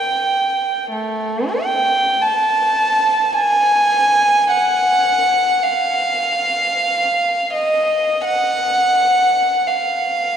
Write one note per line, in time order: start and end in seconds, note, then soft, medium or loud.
0.00 0.91 G5 medium
0.92 1.57 A3 medium
1.60 2.20 G5 medium
2.21 3.35 A5 medium
3.36 4.47 G#5 medium
4.52 5.64 F#5 medium
5.64 7.53 F5 medium
7.55 8.22 D#5 medium
8.25 9.65 F#5 medium
9.67 10.37 F5 medium